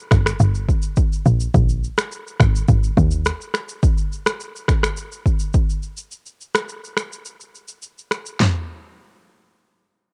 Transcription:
0.11 G1, finger snap, kick, cross-stick, shaker
0.26 finger snap, cross-stick, shaker
0.40 G1, shaker
0.55 shaker
0.69 kick, shaker
0.82 shaker
0.96 kick, shaker
1.12 shaker
1.26 A#1, shaker
1.40 shaker
1.54 A#1, kick, shaker
1.69 shaker
1.84 shaker
1.98 finger snap, cross-stick, shaker
2.12 shaker
2.27 shaker
2.40 G#1, finger snap, kick, cross-stick, shaker
2.55 shaker
2.68 G#1, kick, shaker
2.83 shaker
2.97 D#2, kick, shaker
3.11 shaker
3.25 finger snap, cross-stick, shaker
3.41 shaker
3.54 finger snap, cross-stick, shaker
3.69 shaker
3.83 kick, shaker
3.98 shaker
4.12 shaker
4.26 finger snap, cross-stick, shaker
4.40 shaker
4.56 shaker
4.68 finger snap, kick, cross-stick, shaker
4.83 finger snap, cross-stick, shaker
4.97 shaker
5.12 shaker
5.26 kick, shaker
5.39 shaker
5.54 kick, shaker
5.70 shaker
5.83 shaker
5.97 shaker
6.11 shaker
6.26 shaker
6.41 shaker
6.55 finger snap, cross-stick, shaker
6.69 shaker
6.84 shaker
6.97 finger snap, cross-stick, shaker
7.13 shaker
7.25 shaker
7.41 shaker
7.55 shaker
7.68 shaker
7.82 shaker
7.98 shaker
8.11 finger snap, cross-stick, shaker
8.26 shaker
8.40 snare, floor tom

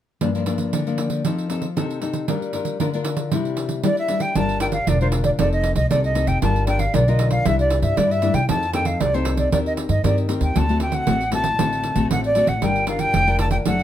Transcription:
0.21 G2 F3 A#3 D4, pandeiro
0.35 F3 A#3 D4, pandeiro
0.46 F3 A#3 D4, pandeiro
0.58 pandeiro
0.73 D3, pandeiro
0.87 F3 A#3 D4, pandeiro
0.98 pandeiro
1.10 pandeiro
1.25 F3 C4 D#4 A4, pandeiro
1.38 pandeiro
1.50 C4 D#4 A4, pandeiro
1.62 pandeiro
1.76 C3 C4 D#4 A4, pandeiro
1.90 pandeiro
2.02 C4 D#4 A4, pandeiro
2.13 pandeiro
2.28 G3 D4 F4 A#4, pandeiro
2.42 pandeiro
2.53 D4 F4 A#4, pandeiro
2.65 pandeiro
2.80 D3 D4 F4 A#4, pandeiro
2.94 D4 F4 A#4, pandeiro
3.05 pandeiro
3.17 pandeiro
3.32 C3 G3 D4 E4, pandeiro
3.45 pandeiro
3.57 pandeiro
3.69 pandeiro
3.83 G3 D4 E4 D5, pandeiro
3.97 E5, pandeiro
4.08 G3 D4 E4, pandeiro
4.20 G5, pandeiro
4.35 G1 G3 D4 F4 A#4 A5, pandeiro
4.49 pandeiro
4.60 D4 F4 A#4 G5, pandeiro
4.72 F5, pandeiro
4.87 E1 D3 D4 F4 A#4 D5, pandeiro
5.01 D4 F4 A#4 C5, pandeiro
5.12 pandeiro
5.24 D5, pandeiro
5.39 F1 F3 C4 D#4 A4 D5, pandeiro
5.53 D#5, pandeiro
5.64 pandeiro
5.75 C2 D#5, pandeiro
5.91 C2 C3 C4 D#4 A4 D5, pandeiro
6.04 D#5, pandeiro
6.15 C4 D#4 A4, pandeiro
6.27 F1 G5, pandeiro
6.42 G1 G3 D4 F4 A#4 A5, pandeiro
6.56 pandeiro
6.67 D4 F4 A#4 G5, pandeiro
6.79 F5, pandeiro
6.94 B1 D3 D4 F4 A#4 D5, pandeiro
7.08 D4 F4 A#4 D#5, pandeiro
7.19 pandeiro
7.31 F5, pandeiro
7.45 C2 C3 G3 D4 E4 E5, pandeiro
7.59 D5, pandeiro
7.70 pandeiro
7.82 G2 E5, pandeiro
7.97 G2 G3 D4 E4 D5, pandeiro
8.11 E5, pandeiro
8.22 G3 D4 E4, pandeiro
8.34 C3 G5, pandeiro
8.49 F2 F3 C4 D#4 A4 A5, pandeiro
8.63 pandeiro
8.73 C4 D#4 A4 G5, pandeiro
8.85 F5, pandeiro
9.01 C2 C3 D5, pandeiro
9.14 C4 D#4 A4 C5, pandeiro
9.25 pandeiro
9.37 D5, pandeiro
9.52 D#2 D#3 C4 G4 A#4 D5, pandeiro
9.66 D#5, pandeiro
9.77 pandeiro
9.89 G2 D#5, pandeiro
10.04 G2 D#3 C4 G4 A#4 D5, pandeiro
10.18 pandeiro
10.29 C4 G4 A#4, pandeiro
10.41 D#2 G5, pandeiro
10.55 D2 D3 A3 C4 F#4 A5, pandeiro
10.69 A3 C4 F#4, pandeiro
10.80 G5, pandeiro
10.92 F#5, pandeiro
11.07 A1 A2 A3 C4 F#4, pandeiro
11.21 pandeiro
11.32 A3 C4 F#4 A5, pandeiro
11.44 pandeiro
11.59 A1 D3 A3 C4 F#4, pandeiro
11.73 pandeiro
11.84 pandeiro
11.95 A1 A3 C4 F#4, pandeiro
12.11 A1 A2 F#5, pandeiro
12.24 D5, pandeiro
12.35 A3 C4 F#4, pandeiro
12.47 A1 F#5, pandeiro
12.62 G1 G3 D4 F4 A#4 G5, pandeiro
12.76 pandeiro
12.87 D4 F4 A#4 F5, pandeiro
12.99 G5, pandeiro
13.14 F1 D3, pandeiro
13.27 D4 F4 A#4, pandeiro
13.39 A5, pandeiro
13.51 G5, pandeiro
13.65 F#1 F#3 A3 D4 A4 F#5, pandeiro
13.79 pandeiro

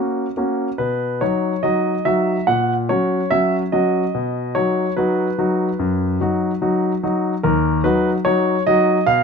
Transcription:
Already playing: A#3 C#4 F#4 D#5
0.37 A#3 C#4 F#4
0.78 B2 B4
1.21 F#3 D#4 F#4 C#5
1.63 F#3 D#4 F#4 D#5
2.05 F#3 D#4 F#4 E5
2.47 A#2 F#5
2.89 F#3 C#4 F#4 C#5
3.31 F#3 C#4 F#4 E5
3.72 F#3 C#4 F#4 D#5
4.15 B2
4.55 F#3 D#4 F#4 C#5
4.97 F#3 D#4 F#4 B4
5.38 F#3 D#4 F#4
5.79 F#2
6.20 F#3 D#4 F#4
6.62 F#3 D#4 F#4
7.03 F#3 D#4 F#4
7.43 D#2 A#4
7.84 F#3 D#4 F#4 B4
8.25 F#3 D#4 F#4 C#5
8.67 F#3 D#4 F#4 D#5
9.06 B2 F5

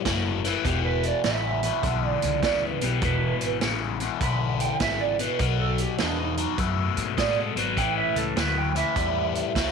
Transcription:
0.05 F#1 A2 F#3, kick, snare, closed hi-hat
0.44 A2 E3, snare, closed hi-hat
0.65 E1 E2 B2 G4, kick, closed hi-hat
0.85 B4
1.03 D5, closed hi-hat
1.24 A1 E2 C#3 E5, snare, closed hi-hat
1.63 E2 B2, closed hi-hat
1.83 B1 E2 D3, kick, closed hi-hat
2.07 D5
2.22 C#2, closed hi-hat
2.42 D2 E2 C#3 D5, kick, snare, closed hi-hat
2.64 B4
2.81 B1 E2 B2 G4, closed hi-hat
3.01 E1 E2 B2 B4, kick, closed hi-hat
3.40 G#1, closed hi-hat
3.61 A1 E2 C#3, snare, closed hi-hat
4.00 E2 B2, closed hi-hat
4.21 B1 E2 D3 B5, kick, closed hi-hat
4.60 G5, closed hi-hat
4.80 G#1 E2 C#3 E5, kick, snare, closed hi-hat
5.01 D5
5.19 E2 B2 B4, closed hi-hat
5.39 B1 B2 F#3 A#4, kick, closed hi-hat
5.60 A4
5.78 G4, closed hi-hat
5.98 E2 B2 G#3 D4, snare, closed hi-hat
6.20 D#4
6.37 B2 F#3, closed hi-hat
6.58 F#2 B2 A3, kick, closed hi-hat
6.97 G#2, closed hi-hat
7.17 A2 B2 G#3 D5, kick, snare, closed hi-hat
7.38 A4
7.56 G#1 B2 F#3 B4, closed hi-hat
7.77 A1 A2 E3 G5, kick, closed hi-hat
7.98 E5
8.15 C#2 A4, closed hi-hat
8.36 D2 A2 F#3 B4, snare, closed hi-hat
8.58 G5
8.75 A2 E3 E5, closed hi-hat
8.96 E2 A2 G3, kick, closed hi-hat
9.35 closed hi-hat
9.55 C#2 A2 F#3, kick, snare, closed hi-hat

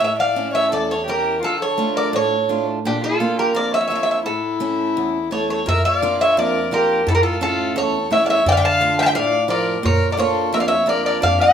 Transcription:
Already playing: C#5
0.00 A2 E5
0.19 D5 F5
0.36 A3 C#4 E4
0.54 C#5 E5
0.71 E2 A4 D5
0.88 A4 C#5
1.06 E3 C#4 E4 G4 A#4
1.42 D3 F4 A4
1.61 A4 C#5
1.78 A3 D4 F4
1.96 A#4 D5
2.13 A2 A4 C#5
2.49 A3 D4 F4
2.85 A#2 D4 G4
3.04 F4 A4
3.20 A#3 D4 F4
3.39 G4 A#4
3.54 F2 A#4 D5
3.74 C#5 E5
3.81 E5
3.88 A#3 D4 E5
3.92 F4 E5
4.03 E5
4.11 E5
4.26 A2 E4 A4
4.60 A3 C#4 E4
4.97 E2
5.31 A3 C#4 E4 A4 C#5
5.50 A4 C#5
5.66 A#2 A#4 E5, darbuka dum
5.85 D5 F5
6.02 A#3 D4 F4, darbuka tek
6.20 C#5 E5, darbuka tek
6.37 F2 A#4 D5, darbuka tek
6.71 A#3 D4 F4 A#4, darbuka tek
6.76 G4
7.07 A2 E4 A4, darbuka dum
7.15 G4 A#4
7.23 F4 A4
7.41 A3 C#4 A4 E5, darbuka tek
7.45 F4
7.59 darbuka tek
7.76 E2 A4 C#5, darbuka tek
8.11 A3 C#4 E4 C#5 E5, darbuka tek
8.25 D5 F5, darbuka tek
8.30 C#5 E5
8.46 D3 D5 G5, darbuka dum
8.51 D5 F5
8.56 E5 G5
8.65 F5 A5
8.81 A3 D4 F4, darbuka tek
8.99 E5 F5 G5 A5
9.06 E5 G5
9.15 A2 D5 F5, darbuka tek
9.48 F3 D4 F4 A#4 D5, darbuka tek
9.68 darbuka tek
9.83 A#2 A#4 C#5, darbuka dum
10.12 A#4 D5
10.17 A#3 D4 F4 A4 C#5, darbuka tek
10.53 F2 A#4 E5, darbuka tek
10.60 D5 F5
10.68 C#5 E5
10.72 darbuka tek
10.86 A#3 D4 F4 D5, darbuka tek
10.90 A#4
11.06 A#4 D5
11.22 F2 D5 F5, darbuka dum
11.41 E5 G5

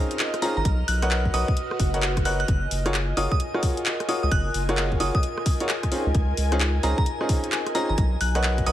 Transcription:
Already playing: C4 C#4 D#4 F4 G#4 A#4 D#5 F6
0.11 closed hi-hat
0.19 clap
0.34 cross-stick, closed hi-hat
0.42 C4 C#4 D#4 F4 G#4 A#5, open hi-hat
0.57 G#1 A#5
0.65 B1 F#4, kick, closed hi-hat
0.77 B4
0.88 B1 F#6, open hi-hat
1.02 A#4 B4 C#5 D#5 F#5, cross-stick, closed hi-hat
1.11 clap
1.25 kick
1.34 B1 A#4 B4 C#5 D#5 F#5 D#6, open hi-hat
1.48 kick
1.57 closed hi-hat, swell
1.71 cross-stick
1.80 F#1, kick, open hi-hat
1.94 A#4 B4 C#5 D#5 F#5, closed hi-hat
2.02 clap
2.17 kick, cross-stick, closed hi-hat
2.25 A#4 B4 C#5 D#5 F#5 F#6, open hi-hat
2.40 F#6, closed hi-hat
2.48 F#1 F4 G#5, kick, closed hi-hat
2.71 F#1, open hi-hat
2.86 F4 F#4 G#4 A#4 C#5, cross-stick, closed hi-hat
2.94 clap
3.14 F#1 F4 F#4 G#4 A#4 C#5 D#6, open hi-hat
3.32 D#6, kick
3.40 closed hi-hat
3.54 F4 F#4 G#4 A#4 C#5, cross-stick
3.63 kick, open hi-hat
3.77 closed hi-hat
3.86 clap
4.00 cross-stick, closed hi-hat
4.09 F4 F#4 G#4 A#4 C#5 D#6, open hi-hat
4.23 C#2 D#6
4.31 F#1 F#6, kick, closed hi-hat
4.54 F#1, open hi-hat
4.69 F4 F#4 G#4 A#4 C#5, cross-stick, closed hi-hat
4.77 clap
4.92 kick
5.00 F#1 F4 F#4 G#4 A#4 C#5 D#6, open hi-hat
5.15 D#6, kick
5.23 closed hi-hat
5.38 cross-stick
5.46 kick, open hi-hat
5.60 F4 F#4 G#4 A#4 C#5, closed hi-hat
5.69 clap
5.83 kick, cross-stick, closed hi-hat
5.92 C4 C#4 D#4 F4 G#4, open hi-hat
6.06 C#2
6.15 C#2, kick, closed hi-hat
6.37 C#2, open hi-hat
6.52 C4 C#4 D#4 F4 G#4, cross-stick, closed hi-hat
6.60 clap
6.83 C#2 C4 C#4 D#4 F4 G#4 A#5, open hi-hat
6.98 A#5, kick
7.06 closed hi-hat
7.21 C4 C#4 D#4 F4 G#4, cross-stick
7.29 kick, open hi-hat
7.44 closed hi-hat
7.52 clap
7.67 cross-stick, closed hi-hat
7.75 C4 C#4 D#4 F4 G#4 A#5, open hi-hat
7.89 G#1 A#5
7.98 B1 F#4, kick, closed hi-hat
8.21 B1 F#6, open hi-hat
8.35 A#4 B4 C#5 D#5 F#5, cross-stick, closed hi-hat
8.44 clap
8.52 B4
8.58 kick, closed hi-hat
8.66 B1 A#4 B4 C#5 D#5 F#5 D#6, open hi-hat

